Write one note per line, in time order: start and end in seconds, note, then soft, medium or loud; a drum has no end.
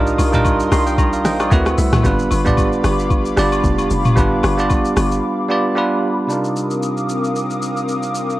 0.00 0.17 C2 loud
0.00 0.32 G3 medium
0.00 0.33 D4 medium
0.00 0.34 D#4 medium
0.00 0.34 F4 medium
0.00 0.35 A#4 loud
0.00 1.48 A#4 medium
0.00 1.48 F5 medium
0.00 1.50 C6 medium
0.00 1.48 D#6 medium
0.07 shaker soft
0.18 0.68 C2 loud
0.18 open hi-hat medium
0.18 high agogo medium
0.18 shaker medium
0.32 1.07 G3 medium
0.32 1.07 D4 medium
0.32 1.07 D#4 medium
0.32 1.08 F4 medium
0.32 0.73 A#4 loud
0.32 kick loud
0.32 mid tom medium
0.32 shaker medium
0.45 kick loud
0.45 high agogo medium
0.45 shaker medium
0.60 shaker medium
0.72 1.27 C2 medium
0.72 0.86 G5 medium
0.72 0.86 A#5 medium
0.72 0.97 C6 medium
0.72 cross-stick medium
0.72 open hi-hat medium
0.72 high agogo medium
0.72 shaker loud
0.87 1.12 D#5 medium
0.87 1.12 G5 medium
0.87 shaker medium
0.98 1.23 A#5 medium
0.98 kick loud
0.98 high agogo medium
0.98 shaker medium
1.13 1.25 D5 medium
1.13 1.25 F5 medium
1.13 shaker medium
1.25 1.50 A#1 loud
1.25 1.39 C5 medium
1.25 1.39 D#5 medium
1.25 1.50 G5 medium
1.25 cross-stick medium
1.25 snare medium
1.25 open hi-hat medium
1.25 shaker medium
1.40 1.65 A#4 medium
1.40 1.65 D5 medium
1.40 cross-stick medium
1.40 high agogo medium
1.40 shaker medium
1.50 1.76 D2 loud
1.50 1.94 A3 medium
1.50 1.95 C4 medium
1.50 2.04 C4 medium
1.50 1.95 E4 medium
1.50 1.95 F#4 medium
1.50 1.96 B4 loud
1.50 1.76 F#5 medium
1.50 2.04 F#5 medium
1.50 5.72 B5 medium
1.50 2.04 E6 medium
1.50 kick medium
1.50 shaker medium
1.66 cross-stick medium
1.66 high agogo medium
1.66 shaker medium
1.78 1.92 C2 loud
1.78 2.03 E5 medium
1.78 open hi-hat medium
1.78 shaker loud
1.93 2.04 C2 medium
1.93 cross-stick medium
1.93 snare medium
1.93 mid tom loud
1.93 high agogo medium
1.93 shaker medium
2.03 2.29 G1 loud
2.03 2.36 G3 medium
2.03 2.37 B3 medium
2.03 2.37 D4 medium
2.03 2.37 F4 medium
2.03 5.73 G4 medium
2.03 2.38 B4 loud
2.03 6.26 F5 medium
2.03 6.26 D6 medium
2.03 kick loud
2.03 shaker medium
2.19 shaker medium
2.31 2.80 G1 loud
2.31 open hi-hat medium
2.31 high agogo medium
2.31 shaker medium
2.44 3.19 G3 medium
2.44 3.19 B3 medium
2.44 3.20 D4 medium
2.44 3.20 F4 medium
2.44 3.20 D5 loud
2.44 kick loud
2.44 mid tom medium
2.44 shaker medium
2.57 kick medium
2.57 high agogo medium
2.57 shaker medium
2.73 shaker medium
2.84 3.34 G1 loud
2.84 cross-stick medium
2.84 open hi-hat medium
2.84 high agogo medium
2.84 shaker loud
2.99 shaker medium
3.10 kick loud
3.10 high agogo medium
3.10 shaker medium
3.25 shaker medium
3.36 3.62 G1 loud
3.36 4.02 G3 medium
3.36 4.02 B3 medium
3.36 4.02 D4 medium
3.36 4.03 F4 medium
3.36 4.03 D5 loud
3.36 cross-stick loud
3.36 open hi-hat soft
3.36 shaker medium
3.52 high agogo medium
3.52 shaker medium
3.64 3.89 F1 loud
3.64 kick loud
3.64 shaker medium
3.78 high agogo medium
3.78 shaker medium
3.91 4.15 F1 loud
3.91 open hi-hat medium
3.91 shaker loud
4.05 mid tom loud
4.05 high agogo medium
4.05 shaker soft
4.16 4.42 G1 loud
4.16 4.49 G3 medium
4.16 4.49 B3 medium
4.16 4.50 D4 medium
4.16 4.50 F4 medium
4.16 4.50 B4 loud
4.16 kick loud
4.16 shaker medium
4.43 4.93 G1 loud
4.43 cross-stick loud
4.43 open hi-hat medium
4.43 high agogo medium
4.43 shaker medium
4.57 5.32 G3 medium
4.57 5.32 B3 medium
4.57 5.32 D4 medium
4.57 5.32 F4 medium
4.57 5.33 D5 loud
4.57 shaker medium
4.69 kick loud
4.69 high agogo medium
4.69 shaker medium
4.85 shaker medium
4.96 5.21 G1 loud
4.96 cross-stick loud
4.96 open hi-hat medium
4.96 high agogo medium
4.96 shaker loud
5.12 shaker medium
5.49 5.74 G3 medium
5.49 5.75 B3 medium
5.49 5.75 D4 medium
5.49 5.76 F4 medium
5.49 5.77 D5 loud
5.75 6.19 G3 medium
5.75 6.20 B3 medium
5.75 6.20 D4 medium
5.75 6.20 F4 medium
5.75 6.29 G4 medium
5.75 6.21 B4 loud
5.75 6.29 B5 medium
6.27 8.37 C3 medium
6.27 8.37 G3 medium
6.27 8.40 C4 medium
6.27 8.38 D4 medium
6.27 8.38 D#4 medium
6.27 8.40 A#4 medium
6.27 8.40 F5 medium
6.27 8.40 D6 medium
6.27 8.40 D#6 medium
6.27 shaker medium
6.31 8.39 F4 medium
6.31 8.39 A#4 medium
6.44 shaker soft
6.56 shaker medium
6.71 shaker medium
6.83 shaker medium
6.97 shaker medium
7.09 shaker medium
7.24 shaker medium
7.36 shaker medium
7.50 shaker medium
7.62 shaker medium
7.77 shaker soft
7.89 shaker medium
8.03 shaker medium
8.15 shaker loud
8.30 shaker soft